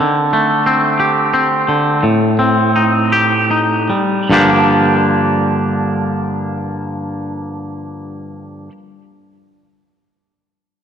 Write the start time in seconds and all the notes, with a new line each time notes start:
Already playing: G4
0.00 D3
0.33 A3
0.66 C4
1.00 G4
1.34 C4
1.68 D3
2.03 A2
2.39 C4
2.76 D#4
3.12 G4
3.51 D#4
3.90 G3
4.30 G2 D3 F3 A#3 D4 G4